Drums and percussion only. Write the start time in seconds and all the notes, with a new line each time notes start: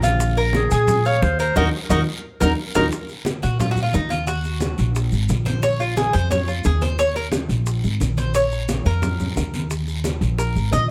0.02 high bongo, high conga, short guiro, maracas
0.19 high bongo, high conga, long guiro, maracas
0.36 high conga, maracas
0.53 high bongo, high conga, short guiro, maracas
0.71 short guiro, maracas
0.87 high bongo, high conga, low conga, long guiro, maracas
1.05 high conga, maracas
1.22 high bongo, low bongo, short guiro, maracas
1.39 short guiro, maracas
1.56 low bongo, low conga, long guiro, maracas
1.89 low bongo, low conga, maracas
2.41 low bongo, low conga, long guiro, maracas
2.74 low bongo, low conga, long guiro, maracas
2.92 high bongo, high conga, long guiro, maracas
3.09 high bongo, high conga, maracas
3.25 high bongo, high conga, short guiro, maracas
3.42 high bongo, high conga, short guiro, maracas
3.60 high bongo, high conga, low conga, long guiro, maracas
3.76 high bongo, high conga, low conga, maracas
3.93 high bongo, low bongo, high conga, short guiro, maracas
4.09 high conga, short guiro, maracas
4.26 high bongo, high conga, long guiro, maracas
4.44 high bongo, high conga, maracas
4.60 high bongo, high conga, short guiro, maracas
4.78 high bongo, high conga, short guiro, maracas
4.95 high bongo, high conga, long guiro, maracas
5.12 high bongo, high conga, maracas
5.29 high bongo, low bongo, high conga, short guiro, maracas
5.45 high conga, short guiro, maracas
5.62 high bongo, high conga, long guiro, maracas
5.80 high bongo, high conga, maracas
5.97 high bongo, high conga, short guiro, maracas
6.13 high bongo, high conga, short guiro, maracas
6.31 high bongo, high conga, low conga, long guiro, maracas
6.48 high bongo, high conga, maracas
6.64 high bongo, low bongo, high conga, short guiro, maracas
6.82 high conga, short guiro, maracas
6.98 high bongo, high conga, long guiro, maracas
7.16 high bongo, high conga, maracas
7.32 high bongo, high conga, short guiro, maracas
7.49 high bongo, high conga, short guiro, maracas
7.65 high bongo, high conga, long guiro, maracas
7.83 high bongo, high conga, maracas
8.00 high bongo, low bongo, high conga, short guiro, maracas
8.17 high conga, short guiro, maracas
8.34 high bongo, high conga, long guiro, maracas
8.51 high bongo, high conga, maracas
8.69 high bongo, high conga, short guiro, maracas
8.86 high bongo, high conga, short guiro, maracas
9.02 high bongo, high conga, low conga, long guiro, maracas
9.20 high bongo, high conga, low conga, maracas
9.36 high bongo, low bongo, high conga, short guiro, maracas
9.54 high conga, short guiro, maracas
9.70 high bongo, high conga, long guiro, maracas
9.87 high bongo, high conga, maracas
10.04 high bongo, high conga, short guiro, maracas
10.21 high bongo, high conga, short guiro, maracas
10.38 high bongo, high conga, long guiro, maracas
10.55 high bongo, high conga, maracas
10.72 high bongo, low bongo, high conga, short guiro, maracas